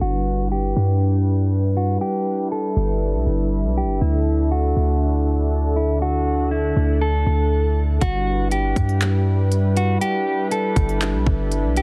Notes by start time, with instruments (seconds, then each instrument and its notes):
0.01 808-style bass G1, analog synth pad G3 D4 E4 B4, clean electric guitar F#4
0.52 clean electric guitar G4
0.76 808-style bass G2
1.77 clean electric guitar F#4
2.01 clean electric guitar G4
2.52 clean electric guitar A4
2.76 808-style bass G1
3.14 808-style bass B1
3.26 808-style bass G1
3.64 808-style bass B1
3.77 clean electric guitar G4
3.83 808-style bass G1
4.01 808-style bass D2, analog synth pad D3 D4 A4, clean electric guitar E4
4.51 clean electric guitar F#4
4.77 808-style bass D2
5.76 clean electric guitar E4
6.02 clean electric guitar F#4
6.51 clean electric guitar E4
6.76 808-style bass D2
7.01 clean electric guitar A4
7.26 808-style bass D2
8.01 808-style bass G1, analog synth pad G3 D4 E4 B4, clean electric guitar F#4, kick, closed hi-hat
8.51 clean electric guitar G4, closed hi-hat
8.76 808-style bass G2, kick, closed hi-hat
8.89 closed hi-hat
9.02 clap, closed hi-hat
9.52 closed hi-hat
9.77 clean electric guitar F#4, closed hi-hat
10.01 clean electric guitar G4, closed hi-hat
10.51 clean electric guitar A4, closed hi-hat
10.76 808-style bass G1, kick, closed hi-hat
10.89 closed hi-hat
11.01 clap, closed hi-hat
11.14 808-style bass B1
11.26 808-style bass G1, kick
11.52 closed hi-hat
11.64 808-style bass B1
11.77 clean electric guitar G4, closed hi-hat